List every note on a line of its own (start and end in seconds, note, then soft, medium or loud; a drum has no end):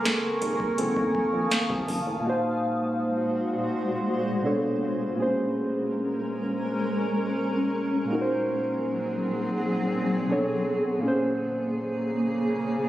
0.00 0.74 C#3 medium
0.00 0.80 G#3 medium
0.00 1.84 A#3 medium
0.00 0.75 C4 medium
0.00 0.80 G#4 loud
0.00 0.78 A4 medium
0.00 0.77 A#4 medium
0.00 1.83 A#4 medium
0.00 0.77 G#5 medium
0.00 0.77 C#6 medium
0.05 snare loud
0.05 closed hi-hat medium
0.42 0.69 G#1 loud
0.42 closed hi-hat medium
0.60 kick loud
0.78 0.92 F1 loud
0.78 2.20 D#3 medium
0.78 2.21 C4 medium
0.78 2.21 A4 medium
0.78 2.23 F5 medium
0.78 2.23 A5 medium
0.78 2.23 D#6 medium
0.78 closed hi-hat medium
0.97 1.10 A1 medium
0.97 kick medium
1.15 kick medium
1.33 1.47 A#1 medium
1.51 snare loud
1.51 closed hi-hat medium
1.70 1.83 C2 loud
1.70 kick loud
1.88 2.02 F#1 medium
1.88 open hi-hat medium
2.06 2.20 A1 medium
2.20 4.38 A#2 medium
2.20 4.39 A#3 medium
2.25 4.42 A#2 medium
2.25 4.42 G#3 medium
2.25 4.40 D#4 medium
2.25 4.42 F#4 medium
2.25 4.41 F#4 medium
2.25 4.42 C5 medium
2.29 4.42 C5 medium
4.42 5.16 B2 medium
4.42 5.17 B3 medium
4.42 5.17 D4 medium
4.42 5.18 A4 medium
4.47 5.19 C#5 medium
5.12 8.04 A#2 medium
5.12 8.05 A#3 medium
5.17 8.07 G#3 medium
5.17 5.24 C4 medium
5.17 8.07 C#4 medium
5.17 8.07 G#4 medium
5.17 8.07 A#4 medium
5.22 8.09 C#4 medium
5.22 8.08 C5 medium
8.05 10.23 A#2 medium
8.05 10.24 A#3 medium
8.10 10.27 A#2 medium
8.10 10.27 F#3 medium
8.10 10.27 C4 medium
8.10 10.25 D#4 medium
8.10 10.27 F#4 medium
8.10 10.27 G#4 medium
8.15 8.19 A#4 medium
8.21 10.31 C5 medium
10.27 11.02 B2 medium
10.27 11.02 B3 medium
10.27 11.03 D4 medium
10.27 11.03 A4 medium
10.32 11.04 C#5 medium
10.98 12.89 A#2 medium
10.98 12.89 A#3 medium
11.03 12.89 C#3 medium
11.03 12.89 A#3 medium
11.03 12.89 C#4 medium
11.03 12.89 G#4 medium
11.08 12.89 C5 medium